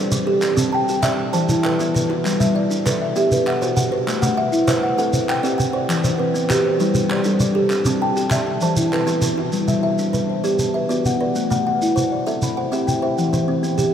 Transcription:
Already playing: kalimba G3 D4 G4 A4 C5 D5
0.12 kalimba D5, shekere
0.27 kalimba G4 A4
0.42 kalimba C4, clap, shekere
0.57 kalimba C4 A5, shekere
0.72 kalimba G5 A5
0.88 kalimba G4, shekere
1.03 kalimba D5 E5, clap, shekere
1.19 kalimba A5
1.33 kalimba E3 C5 A5, clap, shekere
1.49 kalimba E4, clap, shekere
1.64 kalimba A4 B4, clap
1.79 kalimba E3 B3 F#4, shekere
1.95 kalimba B4, shekere
2.10 kalimba E4 F#4, clap
2.25 kalimba G3, clap, shekere
2.40 kalimba G3 E5, clap, shekere
2.55 kalimba D5 E5
2.71 kalimba D4, shekere
2.86 kalimba A4 B4, clap, shekere
3.02 kalimba E5
3.16 kalimba B3 G4 E5, shekere
3.32 kalimba B4, shekere
3.47 kalimba E5 F#5, clap
3.62 kalimba B2 F#4 C5, shekere
3.77 kalimba F#5, shekere
3.92 kalimba B4 C5
4.07 kalimba A3, clap, shekere
4.22 kalimba A3 F#5, clap, shekere
4.37 kalimba E5 F#5
4.52 kalimba E4, shekere
4.67 kalimba B4 C5, clap, shekere
4.83 kalimba F#5
4.98 kalimba C4 A4 F#5, shekere
5.13 kalimba C5, shekere
5.29 kalimba F#5 G5, clap
5.43 kalimba C4 G4 D5, shekere
5.58 kalimba G5, shekere
5.73 kalimba C5 D5
5.89 kalimba E3, clap, shekere
6.04 kalimba E3 C5, clap, shekere
6.18 kalimba C4 B4
6.34 kalimba B3, shekere
6.49 kalimba F#4 G4, clap, shekere
6.65 kalimba C5
6.80 kalimba G3 E4 C5, shekere
6.94 kalimba G4, shekere
7.10 kalimba C5 D5, clap
7.24 kalimba G3 D4 A4, shekere
7.40 kalimba D5, shekere
7.55 kalimba G4 A4
7.70 kalimba C4, clap, shekere
7.85 kalimba C4 A5, clap, shekere
8.02 kalimba G5 A5
8.17 kalimba G4, clap, shekere
8.30 kalimba D5 E5, clap, shekere
8.47 kalimba A5
8.61 kalimba E3 C5 A5, shekere
8.77 kalimba E4, shekere
8.93 kalimba A4 B4, clap
9.07 kalimba E3 B3 F#4, clap, shekere
9.22 kalimba B4, clap, shekere
9.37 kalimba E4 F#4
9.52 kalimba G3, shekere
9.68 kalimba G3 E5, shekere
9.83 kalimba E5
9.98 kalimba D4, shekere
10.13 kalimba B4, shekere
10.30 kalimba C5
10.44 kalimba B3 G4 D5, shekere
10.59 kalimba A5, shekere
10.74 kalimba B4 E5
10.89 kalimba B3 F#4 D5, shekere
11.05 kalimba F#5, shekere
11.21 kalimba B4 D5
11.35 kalimba A3, shekere
11.50 kalimba A3 F#5, shekere
11.67 kalimba F#5
11.82 kalimba E4, shekere
11.96 kalimba C5, shekere
12.12 kalimba D5
12.27 kalimba C4 A4 E5, shekere
12.42 kalimba B5, shekere
12.57 kalimba C5 F#5
12.72 kalimba C4 G4 E5, shekere
12.87 kalimba G5, shekere
13.02 kalimba C5 E5
13.18 kalimba E3, shekere
13.33 kalimba E3 C5, shekere
13.48 kalimba C4
13.63 kalimba B3, shekere
13.78 kalimba G4, shekere

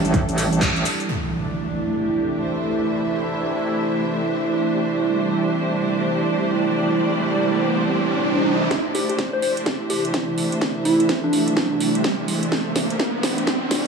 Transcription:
Already playing: analog synth pad C3 E3 G3 G4, string section D4 A4
0.05 wobble bass A1, closed hi-hat, shaker
0.14 kick, closed hi-hat, shaker
0.29 wobble bass A1, closed hi-hat, shaker
0.38 open hi-hat, shaker
0.52 wobble bass A1, closed hi-hat, shaker
0.61 kick, clap, closed hi-hat, shaker
0.76 closed hi-hat, shaker
0.85 open hi-hat, shaker
1.00 closed hi-hat, shaker
1.09 analog synth pad C3 E3 A3 E4, string section A3, impact
1.35 string section D4
1.97 string section G4
2.34 string section E5
2.39 string section C5
4.90 analog synth pad G3, riser
5.83 string section D5
8.71 analog synth pad C3 E3 A3 E4, kick, snare, closed hi-hat, riser
8.95 soft synth lead G4, open hi-hat
9.09 soft synth lead G4, closed hi-hat
9.19 kick, snare, closed hi-hat
9.33 soft synth lead C5
9.39 soft synth lead C5, string section E5, open hi-hat
9.57 closed hi-hat
9.66 kick, snare, closed hi-hat
9.90 soft synth lead G4, open hi-hat
10.05 closed hi-hat
10.14 kick, snare, closed hi-hat
10.38 open hi-hat
10.52 closed hi-hat
10.61 kick, snare, closed hi-hat
10.85 soft synth lead E4, open hi-hat
11.00 closed hi-hat
11.09 kick, snare, closed hi-hat
11.24 soft synth lead D4
11.33 open hi-hat
11.48 closed hi-hat
11.57 kick, snare, closed hi-hat
11.80 open hi-hat
11.95 closed hi-hat
12.04 kick, snare, closed hi-hat
12.28 open hi-hat
12.43 closed hi-hat
12.52 analog synth pad D4, kick, snare, closed hi-hat
12.76 snare, open hi-hat
12.90 closed hi-hat
12.99 kick, snare, closed hi-hat
13.23 snare, open hi-hat
13.38 closed hi-hat
13.47 kick, snare, closed hi-hat
13.71 snare, open hi-hat

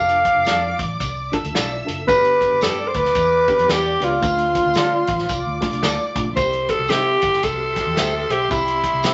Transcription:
Already playing: fingered electric bass F1, reed electric piano D4 F4, string section D5 D6, alto saxophone F5
0.00 reed electric piano A4
0.09 closed hi-hat
0.25 kick, closed hi-hat
0.36 fingered electric bass F1
0.45 fingered electric bass F2, clean electric guitar F4 A4 D5, snare, closed hi-hat, tambourine
0.79 fingered electric bass A1, kick, closed hi-hat
1.00 fingered electric bass C2, kick, closed hi-hat, tambourine
1.32 reed electric piano D4 F4 A4, string section E5 E6, kick, closed hi-hat
1.44 fingered electric bass D2, closed hi-hat
1.55 fingered electric bass B1, clean electric guitar F4 A4 D5, snare, closed hi-hat, tambourine
1.85 fingered electric bass F#1, reed electric piano D4 F4 A4, closed hi-hat
2.07 fingered electric bass G1, reed electric piano B3 D4 F#4, alto saxophone B4, string section D5 D6, kick, closed hi-hat, tambourine
2.15 reed electric piano G4
2.25 closed hi-hat
2.41 kick, closed hi-hat
2.52 fingered electric bass G1
2.61 fingered electric bass G2, clean electric guitar G4 B4 D5, alto saxophone A4, snare, closed hi-hat, tambourine
2.88 alto saxophone C5
2.94 fingered electric bass D2, alto saxophone B4, kick, closed hi-hat
3.05 snare
3.15 fingered electric bass E2, kick, closed hi-hat, tambourine
3.48 reed electric piano B3 D4 G4, kick, closed hi-hat
3.59 fingered electric bass F2, closed hi-hat
3.68 fingered electric bass E2, clean electric guitar G4 B4 D5, alto saxophone G4, snare, closed hi-hat, tambourine
4.00 fingered electric bass C#2, reed electric piano B3 D4 G4, clean electric guitar G4 B4 D5, closed hi-hat
4.05 alto saxophone F4
4.21 fingered electric bass D2, reed electric piano A3 D4 F4, string section C5 C6, kick, closed hi-hat, tambourine
4.38 closed hi-hat
4.55 kick, closed hi-hat
4.66 fingered electric bass D2
4.74 fingered electric bass D3, clean electric guitar F4 A4, snare, closed hi-hat, tambourine
4.78 clean electric guitar D5
5.07 fingered electric bass A1, kick, closed hi-hat
5.19 snare
5.29 fingered electric bass C2, string section D5 D6, kick, closed hi-hat, tambourine
5.46 fingered electric bass D2
5.61 reed electric piano A3 D4 F4, kick, snare, closed hi-hat
5.72 fingered electric bass C2, closed hi-hat
5.83 fingered electric bass D2, clean electric guitar F4 A4 D5, snare, closed hi-hat, tambourine
6.15 fingered electric bass B1, reed electric piano A3 D4 F4, kick, closed hi-hat
6.36 fingered electric bass C2, reed electric piano C4 E4 G4, string section G4 E5 C6, alto saxophone C5, kick, closed hi-hat, tambourine
6.53 closed hi-hat
6.68 alto saxophone A4, kick, closed hi-hat
6.79 fingered electric bass C2
6.88 fingered electric bass C3, reed electric piano C4 D#4 G4, clean electric guitar G4 C5 E5, alto saxophone G4, snare, closed hi-hat, tambourine
6.96 reed electric piano E4
7.22 fingered electric bass G1, kick, closed hi-hat
7.33 snare
7.43 fingered electric bass C2, alto saxophone A4, kick, closed hi-hat, tambourine
7.76 kick, snare, closed hi-hat
7.87 fingered electric bass E2
7.97 fingered electric bass D2, clean electric guitar G4 C5 E5, snare, closed hi-hat, tambourine
8.29 fingered electric bass B1, clean electric guitar G4 C5 E5, alto saxophone G4, closed hi-hat
8.50 fingered electric bass C2, reed electric piano C4 E4 G4, alto saxophone E4, kick, closed hi-hat, tambourine
8.68 closed hi-hat
8.84 kick, closed hi-hat
8.94 fingered electric bass C2
9.03 fingered electric bass C3, reed electric piano C4 E4 G4, clean electric guitar G4 C5 E5, snare, closed hi-hat, tambourine

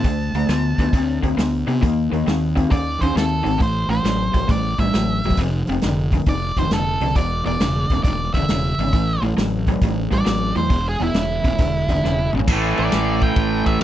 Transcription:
Already playing: lead electric guitar A5
0.04 fingered electric bass D2, overdriven electric guitar D3 A3, kick, open hi-hat
0.34 fingered electric bass D2, overdriven electric guitar D3 A3, open hi-hat
0.48 fingered electric bass D2, overdriven electric guitar D3 B3, snare, open hi-hat
0.78 fingered electric bass D2, overdriven electric guitar D3 B3, kick, open hi-hat
0.93 fingered electric bass D2, overdriven electric guitar D3 C4, kick, open hi-hat
1.23 fingered electric bass D2, overdriven electric guitar D3 C4, kick, open hi-hat
1.37 fingered electric bass D2, overdriven electric guitar D3 B3, snare, open hi-hat
1.67 fingered electric bass C3, overdriven electric guitar D3 B3, open hi-hat
1.81 fingered electric bass D#2, overdriven electric guitar D#3 A#3, kick, open hi-hat
2.11 fingered electric bass D#2, overdriven electric guitar D#3 A#3, open hi-hat
2.26 fingered electric bass D#2, overdriven electric guitar D#3 C4, snare, open hi-hat
2.55 overdriven electric guitar D#3 C4, kick, open hi-hat
2.71 fingered electric bass D#2, overdriven electric guitar D#3 C#4, lead electric guitar D5, kick, open hi-hat
3.01 fingered electric bass D#2, overdriven electric guitar D#3 C#4, lead electric guitar C5, kick, open hi-hat
3.16 fingered electric bass D#2, overdriven electric guitar D#3 C4, lead electric guitar A4, snare, open hi-hat
3.44 fingered electric bass G#1, overdriven electric guitar D#3 C4, open hi-hat
3.59 fingered electric bass A1, overdriven electric guitar A2 E3, lead electric guitar C5, kick, open hi-hat
3.88 fingered electric bass A1, overdriven electric guitar A2 E3, lead electric guitar C5, open hi-hat
4.04 fingered electric bass A1, overdriven electric guitar A2 F#3, snare, open hi-hat
4.33 fingered electric bass A1, overdriven electric guitar A2 F#3, kick, open hi-hat
4.48 fingered electric bass A1, overdriven electric guitar A2 G3, lead electric guitar D5, kick, open hi-hat
4.78 fingered electric bass A1, overdriven electric guitar A2 G3, lead electric guitar E5, kick, open hi-hat
4.93 fingered electric bass A1, overdriven electric guitar A2 F#3, snare, open hi-hat
5.24 fingered electric bass E1, overdriven electric guitar A2 F#3, open hi-hat
5.30 kick
5.37 fingered electric bass F1, overdriven electric guitar F2 C3, kick, open hi-hat
5.67 fingered electric bass F1, overdriven electric guitar F2 C3, open hi-hat
5.82 fingered electric bass F1, overdriven electric guitar F2 D3, snare, open hi-hat
6.11 overdriven electric guitar F2 D3, kick, open hi-hat
6.26 fingered electric bass F1, overdriven electric guitar F2 D#3, lead electric guitar D5, kick, open hi-hat
6.56 fingered electric bass F1, overdriven electric guitar F2 D#3, lead electric guitar C5, kick, open hi-hat
6.71 fingered electric bass F1, overdriven electric guitar F2 D3, lead electric guitar A4, snare, open hi-hat
7.00 fingered electric bass C2, overdriven electric guitar F2 D3, open hi-hat
7.15 fingered electric bass E1, overdriven electric guitar E2 B2, lead electric guitar D5, kick, open hi-hat
7.45 fingered electric bass E1, overdriven electric guitar E2 B2, lead electric guitar D5, open hi-hat
7.60 fingered electric bass E1, overdriven electric guitar E2 C#3, snare, open hi-hat
7.90 fingered electric bass E1, overdriven electric guitar E2 C#3, kick, open hi-hat
8.04 fingered electric bass E1, overdriven electric guitar E2 D3, lead electric guitar D5, kick, open hi-hat
8.34 fingered electric bass E1, overdriven electric guitar E2 D3, lead electric guitar E5, kick, open hi-hat
8.48 fingered electric bass E1, overdriven electric guitar E2 C#3, snare, open hi-hat
8.78 fingered electric bass G#1, overdriven electric guitar E2 C#3, open hi-hat
8.93 fingered electric bass A1, overdriven electric guitar A2 E3, kick, open hi-hat
9.21 fingered electric bass A1, overdriven electric guitar A2 E3, open hi-hat
9.37 fingered electric bass A1, overdriven electric guitar A2 F#3, snare, open hi-hat
9.67 overdriven electric guitar A2 F#3, kick, open hi-hat
9.81 fingered electric bass A1, overdriven electric guitar A2 G3, kick, open hi-hat
10.11 fingered electric bass A1, overdriven electric guitar A2 G3, lead electric guitar D5, kick, open hi-hat
10.25 fingered electric bass A1, overdriven electric guitar A2 F#3, snare, open hi-hat
10.55 fingered electric bass E2, overdriven electric guitar A2 F#3, lead electric guitar C5, open hi-hat
10.70 fingered electric bass E1, overdriven electric guitar E2 B2, kick, open hi-hat
10.88 lead electric guitar G#4
11.00 fingered electric bass E1, overdriven electric guitar E2 B2, lead electric guitar E4, open hi-hat
11.14 fingered electric bass E1, overdriven electric guitar E2 C#3, snare, open hi-hat
11.44 fingered electric bass E1, overdriven electric guitar E2 C#3, kick, open hi-hat
11.58 fingered electric bass E1, overdriven electric guitar E2 D3, kick, open hi-hat
11.88 fingered electric bass E1, overdriven electric guitar E2 D3, kick, open hi-hat
12.04 fingered electric bass E1, overdriven electric guitar E2 C#3, snare
12.18 high tom
12.33 fingered electric bass G#1, overdriven electric guitar E2 C#3, mid tom
12.39 floor tom
12.47 fingered electric bass A1, overdriven electric guitar A2 E3, kick, crash
12.52 overdriven electric guitar A3
12.78 fingered electric bass A1, lead electric guitar D5, ride
12.92 fingered electric bass A1, snare, ride
13.21 lead electric guitar G5, kick, ride
13.36 fingered electric bass A1, kick, ride
13.66 fingered electric bass A1, lead electric guitar E5, kick, ride

